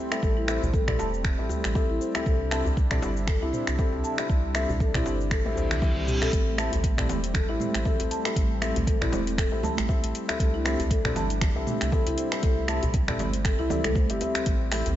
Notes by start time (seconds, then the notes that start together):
Already playing: G3 A3 C4
0.11 C4 E4 G4 A4 E5, finger snap, shaker
0.22 A1 A4, kick, shaker
0.37 E4
0.48 C4 E4 G4 A4 C5 E5, finger snap, shaker
0.62 A1, mid tom, djembe bass, shaker
0.73 A4, kick, shaker
0.88 C4 E4 G4 A4 D5, finger snap, kick, mid tom
0.99 E1 A5, djembe slap, shaker
1.14 shaker
1.24 finger snap, kick, djembe tone, shaker
1.39 A1 C4 E4 G4 A4 E5
1.49 djembe slap, djembe bass, shaker
1.64 A1, finger snap, djembe tone, shaker
1.75 C4 E4 G4 A4 E5, kick, djembe tone, shaker
1.90 A1 E4
2.01 C5, shaker
2.15 C4 E4 G4 A4 E5, finger snap, djembe slap, shaker
2.26 C2 C3 D4 E4 A4, kick, shaker
2.51 C4 E4 G4 A4 E5 A5, finger snap, shaker
2.65 C2, djembe bass, shaker
2.77 kick, shaker
2.91 C4 E4 G4 A4 D5, finger snap, kick, mid tom
3.02 G1, djembe slap, shaker
3.17 shaker
3.27 A4, finger snap, kick, djembe bass, shaker
3.42 C2 C4 E4 G4 A4 E5
3.53 C5, mid tom, shaker
3.67 C2, finger snap, shaker
3.79 C4 E4 G4 A4 E5, kick, shaker
3.92 C2, djembe tone
4.04 A5, shaker
4.18 C4 E4 G4 A4 E5, finger snap, shaker
4.29 C2, kick, shaker
4.55 C4 E4 G4 A4 E5, finger snap, shaker
4.69 C2, mid tom, djembe bass, shaker
4.80 A4, kick, djembe tone, shaker
4.94 C4 E4 G4 A4 D5, finger snap, kick, mid tom
5.06 G1 C5, djembe slap, shaker
5.21 shaker
5.31 A4, finger snap, kick, high tom, reverse cymbal, djembe tone, shaker
5.45 A1 C4 E4 G4 A4 E5, high tom
5.56 C5, djembe slap, djembe bass, shaker
5.71 C2, finger snap, mid tom, djembe tone, shaker
5.82 C4 E4 G4 A4 E5, kick, mid tom, djembe tone, shaker
5.96 C2 G4, mid tom
6.07 G4, mid tom, djembe tone, shaker
6.21 C4 E4 G4 A4 E5, finger snap, mid tom, djembe slap, shaker
6.32 A1 G3 A3 C4, kick, closed hi-hat, high conga, shaker
6.58 C4 E4 G4 A4 E5 A5, finger snap, high conga, shaker
6.72 A1, closed hi-hat, djembe bass, shaker
6.84 kick, closed hi-hat, shaker
6.98 C4 E4 G4 A4 D5, finger snap, kick, mid tom
7.09 E1, closed hi-hat, djembe slap, high conga, low conga, shaker
7.24 closed hi-hat, shaker
7.34 A4, finger snap, kick, closed hi-hat, low conga, djembe bass, shaker
7.49 A1 C4 E4 G4 A4 E5
7.60 C5, mid tom, high conga, shaker
7.74 A1, finger snap, closed hi-hat, shaker
7.85 C4 E4 G4 A4 E5, kick, low conga, shaker
8.00 A1, closed hi-hat, djembe tone
8.11 A5, closed hi-hat, shaker
8.25 C4 E4 G4 A4 E5, finger snap, closed hi-hat, shaker
8.36 A1, kick, closed hi-hat, high conga, shaker
8.61 C4 E4 G4 A4 E5, finger snap, high conga, shaker
8.76 A1, closed hi-hat, mid tom, djembe bass, shaker
8.87 A4, kick, closed hi-hat, shaker
9.01 C4 E4 G4 A4 D5, finger snap, kick, mid tom
9.12 E1 C5, closed hi-hat, djembe slap, high conga, low conga, shaker
9.27 closed hi-hat, shaker
9.38 A4, finger snap, kick, closed hi-hat, djembe tone, shaker
9.52 A1 C4 E4 G4 A4 E5
9.63 A5, djembe slap, high conga, djembe bass, low conga, shaker
9.77 A1, finger snap, closed hi-hat, high conga, djembe tone, shaker
9.88 C4 E4 G4 A4 E5, kick, djembe tone, shaker
10.03 A1, closed hi-hat
10.15 closed hi-hat, shaker
10.28 C4 E4 G4 A4 E5, finger snap, closed hi-hat, djembe slap, shaker
10.39 C2 C3 G3 D4 E4 A4, kick, closed hi-hat, high conga, shaker
10.54 E4
10.65 C4 E4 G4 A4 C5 E5, finger snap, high conga, shaker
10.79 C2, closed hi-hat, djembe bass, shaker
10.91 A4, kick, closed hi-hat, shaker
11.05 C4 E4 G4 A4 D5, finger snap, kick, mid tom
11.16 G1 A5, closed hi-hat, djembe slap, high conga, low conga, shaker
11.30 closed hi-hat, shaker
11.41 finger snap, kick, closed hi-hat, low conga, djembe bass, shaker
11.56 C2 C4 E4 G4 A4 E5
11.67 mid tom, high conga, shaker
11.81 C2, finger snap, closed hi-hat, shaker
11.92 C4 E4 G4 A4 E5, kick, low conga, shaker
12.07 C2 E4, closed hi-hat, djembe tone
12.18 C5, closed hi-hat, shaker
12.32 C4 E4 G4 A4 E5, finger snap, closed hi-hat, shaker
12.43 C2 C4 A4, kick, closed hi-hat, high conga, shaker
12.68 C4 E4 G4 A4 E5 A5, finger snap, high conga, shaker
12.83 C2, closed hi-hat, mid tom, djembe bass, shaker
12.94 kick, closed hi-hat, djembe tone, shaker
13.08 C4 E4 G4 A4 D5, finger snap, kick, mid tom
13.19 G1, closed hi-hat, djembe slap, high conga, low conga, shaker
13.33 closed hi-hat, shaker
13.45 A4, finger snap, kick, closed hi-hat, djembe tone, shaker
13.59 C2 C4 E4 G4 A4 E5
13.70 C4 E4 G4 A4 D5 E5, djembe slap, high conga, low conga, djembe bass, shaker
13.84 C2 A4, finger snap, closed hi-hat, djembe tone, high conga, shaker
13.95 C5, kick, djembe tone, shaker
14.10 G1 C4 E4 G4 A4 E5, closed hi-hat
14.21 C4 E4 G4 A4 E5, closed hi-hat, djembe tone, shaker
14.35 finger snap, closed hi-hat, djembe slap, shaker
14.46 A1 A3, kick, closed hi-hat, high conga, shaker
14.72 C4 E4 G4 A4 E5, finger snap, open hi-hat, high conga, shaker
14.86 A1, closed hi-hat, djembe bass, shaker